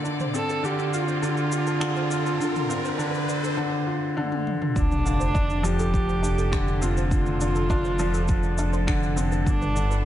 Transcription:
Already playing: A4 D5, riser
0.04 D3, shaker
0.15 C4
0.20 C5, mid tom, shaker
0.33 C4 A4 D5, shaker
0.49 A4, shaker
0.63 D3 D4 F4 G4, shaker
0.79 D4, shaker
0.93 F4 F5, shaker
1.08 C5, shaker
1.22 D3 D4 F4, shaker
1.37 shaker
1.51 F4 D5, shaker
1.67 A4, shaker
1.80 D3, finger snap, shaker
1.96 C5, shaker
2.11 D5, shaker
2.26 A4, shaker
2.40 D3 D4, shaker
2.55 D4, mid tom, shaker
2.69 C4 F5, shaker
2.85 C5, shaker
2.98 D3 D4, shaker
3.14 shaker
3.29 D5, shaker
3.43 A4, shaker
3.57 D3
3.87 F4
4.17 D3, high tom
4.32 high tom
4.47 mid tom
4.62 mid tom
4.76 F1 F3 D4, kick, sub drop, shaker
4.91 D4, mid tom, shaker
5.05 D3 F5, shaker
5.20 C5, shaker
5.34 D4, kick, shaker
5.50 A4, shaker
5.63 F3 G4 D5, shaker
5.79 A4, shaker
5.94 kick, shaker
6.09 C5, shaker
6.22 D4 D5, shaker
6.38 A4, shaker
6.51 D3 D4, finger snap, kick, shaker
6.67 D4, shaker
6.81 C4 F4 F5, shaker
6.96 C5, shaker
7.11 D4 F4, kick, shaker
7.26 mid tom, shaker
7.41 D3 D5, shaker
7.55 A4, shaker
7.70 D4, kick, shaker
7.85 C5, shaker
7.99 F3 D5, shaker
8.14 A4, shaker
8.28 D4, kick, shaker
8.43 D4, shaker
8.58 D4 F5, shaker
8.73 C5, shaker
8.87 D3 D4, finger snap, kick, shaker
9.03 shaker
9.16 C4 D5, shaker
9.32 A4, shaker
9.46 G1 G3 D4, kick, shaker
9.54 D4
9.61 B4, mid tom, shaker
9.75 D3 D5, shaker
9.84 B4
9.91 A4, shaker

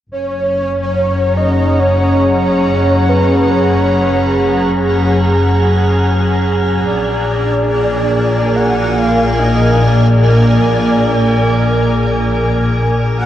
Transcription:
0.08 F#1 F#3 C#5
0.12 G#5 F6
0.58 C#4
0.68 A#5
0.84 F#5
1.04 G#4
1.37 D#5
1.79 C#5
3.09 B4
3.50 C#5
6.85 A#1 A#2 D5
7.21 A#3
7.54 A#4 G#5
8.56 F#5
8.98 F5
9.39 D#5
9.83 D5
10.27 D5
13.18 F#5

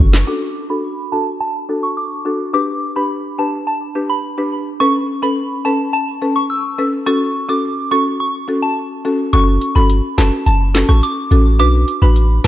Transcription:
0.00 F#1
0.13 snare, clap
0.27 D4 F#4 A4 D6
0.70 D4 F#4 A4 B5
1.12 D4 F#4 A4 A5
1.40 A5
1.69 D4 F#4 A4
1.83 C#6
1.97 D6
2.25 D4 F#4 A4
2.54 D4 G4 B4 D6
2.96 D4 G4 B4 B5
3.38 D4 G4 B4 A5
3.67 A5
3.95 D4 G4 B4
4.10 B5
4.38 D4 G4 B4
4.80 C#4 A4 B4 C#6
5.22 C#4 A4 B4 B5
5.65 C#4 A4 B4 A5
5.93 A5
6.22 C#4 A4 B4
6.36 C#6
6.50 E6
6.78 C#4 A4 B4
7.06 C#4 F#4 A4 C#6
7.49 C#4 F#4 A4 D6
7.91 C#4 F#4 A4 C#6
8.20 C#6
8.48 C#4 F#4 A4
8.62 A5
9.05 C#4 F#4 A4
9.33 F#1 C#4 F#4 A4 C#6, closed hi-hat
9.61 closed hi-hat
9.75 G1 C#4 F#4 A4 B5
9.90 closed hi-hat
10.18 F#1 C#4 F#4 A4 A5, snare, clap, closed hi-hat
10.46 F#1 A5, closed hi-hat
10.74 C#4 F#4 A4, snare, clap, closed hi-hat
10.89 A1 C#6, cross-stick
11.03 D6, closed hi-hat
11.31 A1 C#4 F#4 A4, closed hi-hat
11.59 B1 D4 F#4 B4 D6, closed hi-hat
11.88 closed hi-hat
12.02 A1 D4 F#4 B4 B5
12.16 closed hi-hat

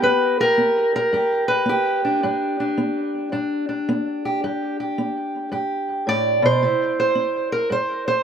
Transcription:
Already playing: B3 G4
0.02 G2 B4
0.40 G4 A#4
0.58 B3
0.96 A#4
1.13 G2 G4
1.48 B4
1.66 B3 G4
2.05 D4
2.23 G2 D4
2.60 D4
2.78 B3
3.32 G2 D4
3.69 D4
3.89 B3
4.25 G4
4.44 G2 G4
4.80 G4
4.98 B3
5.52 G2 G4
6.07 A2 D5
6.42 B2 C5
6.63 C3 E4
7.00 C5
7.15 C4
7.52 A#4
7.70 G2 C5
8.08 C5

